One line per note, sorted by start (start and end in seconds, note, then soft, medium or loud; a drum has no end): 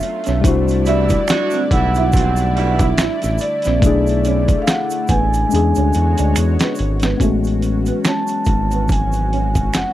0.00 0.40 F#3 medium
0.00 3.78 A3 medium
0.00 0.39 B3 medium
0.00 0.40 C#4 medium
0.00 0.41 D4 medium
0.00 0.41 F4 medium
0.00 0.42 F4 medium
0.00 0.47 E5 medium
0.00 muted clean electric guitar stroke soft
0.00 closed hi-hat medium
0.00 shaker soft
0.24 0.42 B1 medium
0.24 0.38 C#4 medium
0.24 snare soft
0.24 closed hi-hat soft
0.24 shaker soft
0.41 1.15 C2 loud
0.41 3.79 D3 medium
0.41 3.77 G3 medium
0.41 3.78 D4 medium
0.41 5.47 E4 medium
0.41 5.47 D5 medium
0.41 kick loud
0.41 closed hi-hat medium
0.41 shaker medium
0.45 3.79 E4 medium
0.45 3.80 F#4 medium
0.45 0.84 C5 loud
0.68 closed hi-hat medium
0.68 shaker soft
0.86 1.20 B2 medium
0.86 1.20 E3 medium
0.86 1.20 G3 medium
0.86 1.20 E4 medium
0.86 1.03 E4 medium
0.86 1.67 D5 loud
0.86 closed hi-hat medium
0.86 shaker soft
1.09 kick medium
1.09 closed hi-hat soft
1.09 shaker soft
1.28 1.63 F#3 medium
1.28 1.63 D4 medium
1.28 1.63 F#4 loud
1.28 finger snap medium
1.28 snare loud
1.28 closed hi-hat medium
1.28 shaker medium
1.51 1.65 C4 medium
1.51 closed hi-hat soft
1.51 shaker medium
1.71 2.94 B1 loud
1.71 2.05 B2 medium
1.71 2.05 E3 medium
1.71 2.05 G3 medium
1.71 2.05 E4 medium
1.71 2.83 F#5 loud
1.71 muted clean electric guitar stroke soft
1.71 kick loud
1.71 closed hi-hat medium
1.95 2.09 E4 medium
1.95 closed hi-hat soft
1.95 shaker soft
2.13 2.47 G2 medium
2.13 2.47 C3 medium
2.13 2.47 E3 medium
2.13 2.47 C4 medium
2.13 2.31 F#4 medium
2.13 kick loud
2.13 shaker medium
2.17 closed hi-hat medium
2.36 closed hi-hat soft
2.36 shaker medium
2.56 2.89 B2 medium
2.56 2.89 E3 medium
2.56 2.89 G3 medium
2.56 2.89 E4 medium
2.56 muted clean electric guitar stroke soft
2.56 closed hi-hat medium
2.79 2.93 E4 medium
2.79 3.36 E5 medium
2.79 kick loud
2.79 closed hi-hat soft
2.79 shaker medium
2.98 3.09 A1 medium
2.98 3.15 E4 medium
2.98 finger snap medium
2.98 snare loud
2.98 closed hi-hat medium
2.98 shaker medium
3.22 3.38 A1 medium
3.22 snare soft
3.22 closed hi-hat medium
3.22 shaker medium
3.38 4.57 D5 loud
3.38 closed hi-hat medium
3.38 shaker medium
3.44 muted clean electric guitar stroke soft
3.62 snare soft
3.62 closed hi-hat soft
3.62 shaker soft
3.66 3.81 A#1 medium
3.66 3.78 C4 medium
3.80 4.54 B1 loud
3.80 5.49 D3 medium
3.80 5.47 A3 medium
3.80 5.49 A3 medium
3.80 5.48 D4 medium
3.80 kick loud
3.80 closed hi-hat medium
3.80 shaker medium
3.85 4.00 D4 medium
3.85 5.49 E4 medium
3.85 5.50 G#4 medium
4.07 closed hi-hat medium
4.07 shaker soft
4.25 4.42 C#4 medium
4.25 closed hi-hat medium
4.25 shaker soft
4.48 kick medium
4.48 closed hi-hat medium
4.48 shaker soft
4.62 4.67 F5 medium
4.67 5.11 F#5 loud
4.67 finger snap medium
4.67 snare loud
4.67 closed hi-hat medium
4.67 shaker medium
4.90 closed hi-hat soft
4.90 shaker medium
5.08 5.45 A1 loud
5.08 5.26 B3 medium
5.08 6.32 G#5 loud
5.08 kick medium
5.08 closed hi-hat medium
5.08 shaker medium
5.34 closed hi-hat soft
5.34 shaker soft
5.49 7.18 D3 medium
5.49 7.16 G#3 medium
5.49 7.18 G#3 medium
5.49 7.17 C#4 medium
5.49 7.18 F#4 medium
5.49 7.18 C#5 medium
5.49 shaker medium
5.53 5.73 E2 loud
5.53 7.18 D4 medium
5.53 7.19 G#4 medium
5.53 closed hi-hat medium
5.75 5.92 D2 medium
5.75 5.88 C#4 medium
5.75 closed hi-hat soft
5.75 shaker medium
5.93 6.15 E2 loud
5.93 muted clean electric guitar stroke soft
5.93 closed hi-hat medium
5.93 shaker medium
6.18 6.34 D2 loud
6.18 6.31 D4 medium
6.18 closed hi-hat medium
6.18 shaker medium
6.36 6.57 E2 loud
6.36 finger snap medium
6.36 closed hi-hat medium
6.36 shaker medium
6.59 6.73 B3 medium
6.59 snare loud
6.59 closed hi-hat medium
6.59 shaker soft
6.75 closed hi-hat medium
6.75 shaker medium
6.80 7.15 G#1 loud
6.80 muted clean electric guitar stroke soft
7.00 7.15 B3 medium
7.00 snare medium
7.00 closed hi-hat soft
7.00 shaker soft
7.17 7.91 A1 medium
7.17 9.93 E3 medium
7.17 9.93 F#3 medium
7.17 9.93 B3 medium
7.17 9.93 C#4 medium
7.17 9.93 F#4 medium
7.17 kick medium
7.17 closed hi-hat medium
7.17 shaker medium
7.22 9.93 G#3 medium
7.22 7.37 A3 medium
7.22 9.93 F#4 medium
7.44 closed hi-hat soft
7.44 shaker soft
7.62 muted clean electric guitar stroke soft
7.62 closed hi-hat medium
7.62 shaker soft
7.86 8.00 B3 medium
7.86 closed hi-hat soft
7.86 shaker soft
8.05 8.22 C#4 medium
8.05 8.87 A5 medium
8.05 finger snap medium
8.05 snare loud
8.05 closed hi-hat medium
8.05 shaker medium
8.27 closed hi-hat soft
8.27 shaker medium
8.45 9.70 G#1 medium
8.45 muted clean electric guitar stroke soft
8.45 kick medium
8.45 closed hi-hat medium
8.45 shaker soft
8.71 8.85 B3 medium
8.71 closed hi-hat soft
8.71 shaker soft
8.88 9.77 G#5 loud
8.88 kick loud
8.88 closed hi-hat medium
8.88 shaker medium
9.12 closed hi-hat soft
9.12 shaker medium
9.33 9.49 C#4 medium
9.33 closed hi-hat soft
9.55 kick medium
9.55 closed hi-hat soft
9.55 shaker soft
9.74 9.85 F#1 soft
9.74 9.93 F#5 medium
9.74 finger snap medium
9.74 snare loud
9.74 closed hi-hat medium
9.74 shaker medium